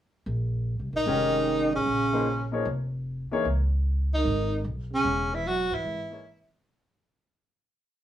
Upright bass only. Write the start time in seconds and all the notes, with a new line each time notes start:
0.26 A#1
0.79 C2
0.93 A1
1.06 F1
1.73 A1
1.86 A#1
2.65 F1
3.32 muted upright bass stroke
3.45 C#2
4.25 G#1
4.64 B1
5.04 E1
5.71 G#2
5.85 G#1